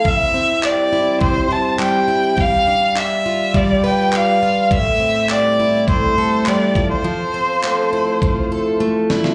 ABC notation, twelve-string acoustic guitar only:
X:1
M:4/4
L:1/8
Q:1/4=103
K:C
V:1 name="Twelve-string acoustic guitar"
C, C G, E C, c G, E | G, D D F G, B D F | A,, C G, E A,, A G, F, | F, C A, E F, A A, E |]